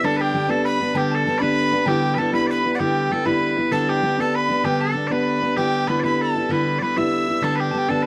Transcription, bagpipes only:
0.05 A4
0.17 B4
0.21 G4
0.50 A4
0.66 B4
0.97 G4
1.15 A4
1.38 B4 D5
1.88 G4
2.14 B4
2.19 A4
2.34 B4
2.47 B4 D5
2.75 D5
2.79 G4
3.12 A4
3.26 B4
3.72 A4
3.89 G4
4.20 A4
4.35 B4
4.65 G4
4.80 A4
5.07 D5
5.11 B4
5.57 G4
5.88 B4
6.00 B4 D5
6.22 A4
6.51 B4
6.79 B4 D5
6.97 E5
7.43 A4
7.56 B4
7.60 G4
7.88 A4
8.03 B4

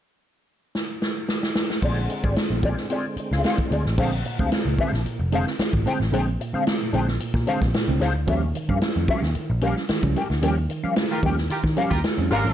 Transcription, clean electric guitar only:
1.83 C4 F4 G#4 D5
2.11 muted clean electric guitar stroke
2.24 C4 F4 G#4 D5
2.51 muted clean electric guitar stroke
2.63 C4 F4 G#4 D5
2.77 muted clean electric guitar stroke
2.90 C4 F4 G#4 D5
3.19 muted clean electric guitar stroke
3.33 C4 F4 G#4 F5
3.44 C4 F4 G#4 F5
3.59 muted clean electric guitar stroke
3.71 C4 F4 G#4 D5
3.85 muted clean electric guitar stroke
3.98 D4 G#4 C5 F5
4.12 muted clean electric guitar stroke
4.25 muted clean electric guitar stroke
4.39 D4 G#4 C5 F5
4.67 muted clean electric guitar stroke
4.79 D4 G#4 C5 F5
4.93 muted clean electric guitar stroke
5.19 muted clean electric guitar stroke
5.33 D4 G#4 C5 F5
5.47 muted clean electric guitar stroke
5.61 muted clean electric guitar stroke
5.86 D4 G#4 C5 G5
6.13 D4 G#4 C5 G5
6.27 muted clean electric guitar stroke
6.40 muted clean electric guitar stroke
6.54 D4 G#4 C5 F5
6.67 muted clean electric guitar stroke
6.81 muted clean electric guitar stroke
6.93 D4 G#4 C5 G5
7.08 muted clean electric guitar stroke
7.34 muted clean electric guitar stroke
7.47 D4 G#4 C5 F5
7.74 muted clean electric guitar stroke
7.88 muted clean electric guitar stroke
8.00 D4 G#4 C5 F5
8.15 muted clean electric guitar stroke
8.28 C#4 G4 A#4 F5
8.43 muted clean electric guitar stroke
8.55 muted clean electric guitar stroke
8.69 C#4 G4 A#4 F5
8.96 muted clean electric guitar stroke
9.08 C#4 G4 A#4 F5
9.23 muted clean electric guitar stroke
9.50 muted clean electric guitar stroke
9.62 C#4 G4 A#4 F5
9.76 muted clean electric guitar stroke
9.89 muted clean electric guitar stroke
10.16 C#4 G4 A#4 G5
10.30 muted clean electric guitar stroke
10.42 C#4 G4 A#4 G5
10.58 muted clean electric guitar stroke
10.70 muted clean electric guitar stroke
10.84 C#4 G4 A#4 F5
10.97 muted clean electric guitar stroke
11.12 muted clean electric guitar stroke
11.24 C#4 G4 A#4 G5
11.38 muted clean electric guitar stroke
11.64 muted clean electric guitar stroke
11.77 C#4 G4 A#4 F5
11.92 muted clean electric guitar stroke
12.04 muted clean electric guitar stroke
12.18 muted clean electric guitar stroke
12.31 C#4 G4 A#4 F5
12.46 muted clean electric guitar stroke

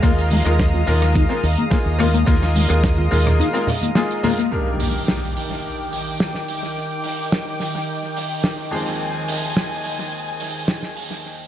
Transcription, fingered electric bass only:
0.03 D#2
0.45 D#2
0.87 D#2
1.43 D#2
1.86 D#2
2.28 D#2
2.70 D#2
3.12 D#2

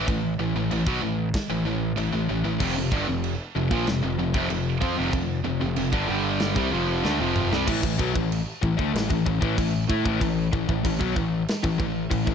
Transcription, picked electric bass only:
0.08 A1
0.39 A1
0.56 A1
0.72 A1
0.86 B1
1.03 A1
1.51 A1
1.65 A1
1.98 A1
2.13 A1
2.30 A1
2.45 A1
2.61 F1
2.77 F1
2.92 G1
3.09 F1
3.56 F1
3.71 A#1
3.88 F1
4.03 F1
4.19 F1
4.35 F1
4.50 F1
4.82 F2
4.99 F1
5.13 F1
5.46 F1
5.62 F1
5.78 F1
5.93 G1
6.10 G1
6.56 C2
6.73 F1
7.05 D2
7.20 F1
7.52 C2
7.68 A1
7.84 A1
7.99 B1
8.16 A1
8.63 A1
8.79 D2
8.94 A1
9.10 A1
9.27 A1
9.42 A1
9.58 A1
9.90 A2
10.06 A1
10.22 A1
10.53 A1
10.69 A1
10.85 A1
11.01 B1
11.17 A1
11.64 A1
11.80 A1
12.11 A1
12.27 A1

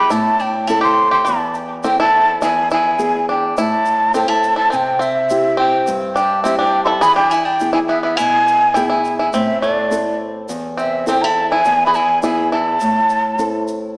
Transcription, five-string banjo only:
0.10 E4
0.39 D4
0.67 E4
0.81 G4
1.11 G4
1.25 E4
1.84 C4
2.00 E4
2.42 E4
2.72 E4
3.29 D4
3.58 E4
4.14 C4
4.28 E4
4.56 E4
4.70 C4
4.99 C4
5.57 C4
6.16 D4
6.44 C4
6.59 D4
6.86 E4 A4
7.01 G#4
7.16 D4
7.31 E4
7.45 D4
7.73 E4
7.89 B3
8.03 B3
8.17 E4
8.74 E4
8.90 E4
9.19 E4
9.34 C4
9.62 A3
10.77 C4
11.09 C4
11.24 E4
11.52 E4
11.87 G#4
11.95 E4
12.24 E4
12.52 E4

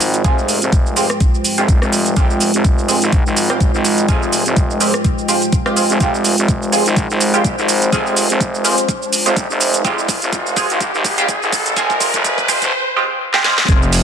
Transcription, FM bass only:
Already playing: G#1
0.62 F1
1.58 F1
1.82 F1
2.17 F1
2.54 F1
3.02 G#1
3.26 G#1
3.74 G#1
4.09 F1
4.46 F1
5.90 F1
6.38 F1
6.86 G#1
7.10 G#1
7.58 G#1
7.92 F1
8.30 F1
9.26 F1
9.50 F1
9.85 F1
10.22 F1
10.70 G#1
10.94 G#1
11.42 G#1
11.77 F1
12.14 F1
12.62 F1
13.69 F1

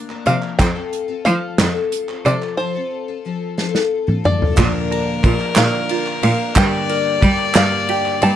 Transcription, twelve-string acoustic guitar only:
Already playing: A#3
0.09 A#3 D4 A#4
0.26 F3 A#3 D4 A#4
0.59 F3 C4 F4 A4
0.75 C4 F4 A4
1.08 C4 F4 A4
1.25 F3 C4 F4 A4
1.59 F3 C4 F4 A4
1.75 C4 F4 A4
2.08 C4 F4 A4
2.25 F3 C4 F4 A4
2.59 F3 C4 F4 A4
2.75 C4 F4 A4
3.08 C4 F4 A4
3.25 F3 C4 F4 A4
3.58 F3 C4 F4 A4
3.74 C4 F4 A4
4.07 C4 F4 A4
4.24 F3 C4 F4 A4
4.56 A#2 D3 F3 A#3 D4 A#4
5.24 F3 A#3 A#4
5.56 A#2 D3 F3 A#3 D4 A#4
6.22 F3 A#3 D4 A#4
6.56 G2 D3 G3 A#3 A#4
7.23 G3 A#3 D4 A#4
7.55 G2 D3 G3 A#3 A#4
8.22 G3 A#3 D4 A#4

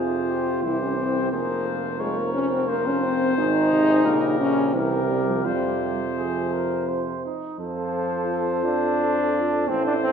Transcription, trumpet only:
Already playing: C5
0.64 C5
1.32 C5
2.00 C#5
2.68 C5
4.05 A#4
4.76 A#4
5.46 C5
7.59 C5
9.70 C5

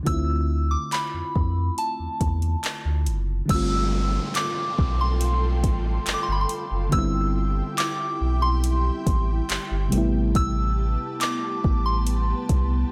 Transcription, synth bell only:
0.07 E6
0.71 D6
0.93 B5
1.78 A5
3.50 E6
4.36 D6
5.01 C6
6.14 D6
6.23 C6
6.32 B5
6.41 C6
6.93 E6
7.78 D6
8.42 C6
10.36 E6
11.21 D6
11.86 C6

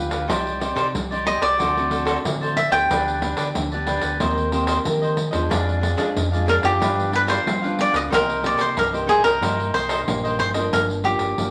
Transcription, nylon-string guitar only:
Already playing: D3 D4 F4 B4
0.29 C4 D#4 G4 D5
0.61 D#4 G4 D5
0.95 G3
1.12 D#4 G4 D5
1.60 D3 A3 C4 F#4
1.77 A3 C4 F#4
2.25 A2 A3 C4 F#4
2.72 B3 D4 G4
2.90 D3
3.23 B3 D4 G4
3.56 D3
3.73 B3 D4 G4
4.20 D#3 A#3 C4 G4
4.52 A#3 C4 G4
4.85 D#3 A#3 C4 G4
5.32 F3 G#3 D4
5.50 F2
5.97 F3 G#3 D4
6.16 F2
6.34 F3 G#3 D4
6.63 F3 B3 D4
6.81 G2
7.28 F3 B3 D4
7.46 D3
7.63 F3 B3 D4
8.11 C3 A#3 D#4 G4
8.42 A#3 D#4 G4
8.77 G2
8.93 A#3 D#4 G4
9.42 C3 A#3 D#4 G4
10.07 G2 A#3 D#4 G4
10.55 F3 A#3 D4
10.72 G2
11.05 F3 A#3 D4
11.39 D3 F3 A#3 D4

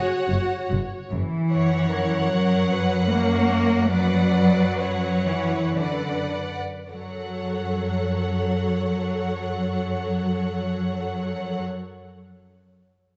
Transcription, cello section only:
0.28 F#2
0.69 F#2
1.10 F#2 E3
2.31 F#3
3.10 A#3
3.91 F#3
5.27 E3
5.77 D3
6.91 F#3

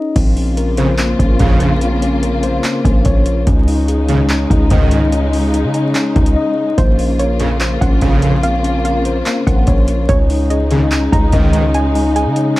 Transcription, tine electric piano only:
Already playing: C#4 D#4 G#4 D#5
0.16 C4
0.37 C#4
0.57 A#4
0.78 C5
0.98 A#3
1.19 C#4
1.40 F5
1.81 C4
2.02 C#4
2.23 A#4
2.43 C5
2.64 A#3
2.85 C#4
3.05 C#5
3.47 C#4
3.68 D#4
3.88 G#4
4.09 C#4
4.29 C#4
4.50 D#4
4.71 D#5
5.13 C#4
5.33 D#4
5.54 G#4
5.74 C#4
5.95 C#4
6.16 D#4
6.36 D#5
6.78 A#3
6.99 C#4
7.19 A#4
7.61 C5
7.81 C#4
8.02 F5
8.43 C4
8.64 C#4
8.85 A#4
9.05 C5
9.26 A#3
9.47 C#4
9.67 C#5
10.09 C#4
10.30 D#4
10.50 G#4
10.71 C#4
10.91 C#4
11.12 D#4
11.33 D#5
11.75 C#4
11.95 D#4
12.16 G#4
12.37 C#4

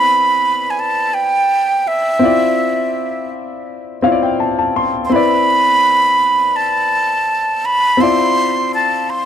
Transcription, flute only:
Already playing: B5
0.70 G#5
0.80 A5
1.14 G5
1.88 E5
5.05 C6
5.12 B5
6.56 A5
7.65 B5
8.01 C6
8.75 A5
9.10 C6

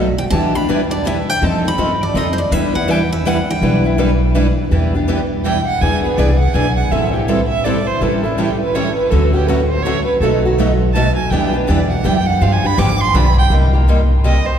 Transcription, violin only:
5.44 G5
5.67 F#5
5.81 G#5
6.04 B4
6.18 D5
6.40 F#5
6.54 G#5
6.77 F#5
6.91 E5
7.14 G4
7.28 B4
7.49 E5
7.64 D5
7.87 C5
8.01 B4
8.24 E4
8.38 G4
8.61 B4
8.75 C#5
8.96 B4
9.10 A4
9.33 G4
9.47 B4
9.68 C5
9.83 C#5
10.05 B4
10.21 A4
10.94 A5
11.16 G#5
11.30 G5
11.53 B4
11.67 D5
11.90 F#5
12.05 G5
12.26 F#5
12.42 F5
12.52 G#5
12.66 B5
12.78 D6
13.01 C6
13.16 B5
13.38 G5
14.25 D#5
14.46 C5

